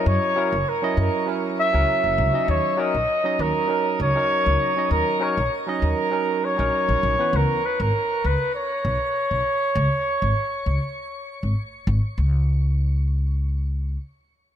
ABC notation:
X:1
M:4/4
L:1/16
Q:"Swing 16ths" 1/4=99
K:C#dor
V:1 name="Muted trumpet"
c4 A2 A2 z2 e6 | c2 d4 A4 c6 | A2 c2 z2 A4 c6 | A2 B A3 B2 c8- |
c12 z4 | z16 |]
V:2 name="Tine electric piano"
[F,CEd]2 [F,CEA] z2 [F,CEd]3 [F,CEA]3 [F,CEA]4 [F,CDd]- | [F,CDd]2 [F,CDA] z2 [F,CDd]3 [F,CDA]3 [F,CDA]4 [F,CDd]- | [F,CDd]2 [F,CDA] z2 [F,CDd]3 [F,CDA]3 [F,CDA]4 [E,B,CB]- | [E,B,CB]2 z12 z2 |
z16 | z16 |]
V:3 name="Upright bass" clef=bass
F,, z2 F,,, z2 F,, z4 C,, z F,,, C,, z | D,, z2 A,,, z2 D,, z3 C,, z2 C,, z2 | D,, z2 A,,, z2 D,, z4 A,,, z A,,, A,,, z | C,, z2 G,,, z2 C,, z3 B,,, z2 B,,, z2 |
C,, z2 G,,, z2 C,, z4 G,,, z2 G,,, z | C,,12 z4 |]